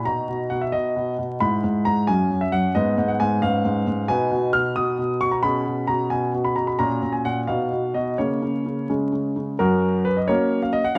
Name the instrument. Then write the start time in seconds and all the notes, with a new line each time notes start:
grand piano
0.05 B2 D#4 F#4 A#5
0.28 B2
0.50 B2 F#5
0.61 E5
0.72 B2 D#5
0.96 B2
1.19 B2
1.40 G#2 E4 B5
1.64 G#2
1.85 G#2 A#5
2.07 F#2 C#4 F#4 G#5
2.31 F#2
2.41 E5
2.52 F#2 F#5
2.75 G#2 B3 B4 D#5
2.98 G#2
3.08 F#5
3.20 G#2 G#5
3.42 G#2 C#4 B4 F5
3.65 G#2
3.87 G#2
4.08 B2 D#4 B4 G#5
4.31 B2
4.53 B2 F6
4.76 B2 D#6
4.99 B2
5.21 B2 C#6
5.31 A#5
5.43 B2 C#4 G#4 B5
5.66 B2
5.87 B2 A#5
6.10 B2 G#5
6.34 B2
6.44 B5
6.56 B2 A#5
6.67 B5
6.79 A#2 C#4 F#4 A#5
7.02 A#2
7.12 G#5
7.25 A#2 F#5
7.47 B2 B3 D#4 F5
7.72 B2
7.94 B2 D#5
8.18 C#3 A#3 C#4 C#5
8.42 C#3
8.66 C#3
8.90 C#3 G#3 C#4
9.13 C#3
9.36 C#3
9.59 F#2 F#4 A#4
10.05 B4
10.17 D#5
10.28 F#3 A#3 C#4 A#4 C#5
10.62 F5
10.73 D#5
10.84 F#5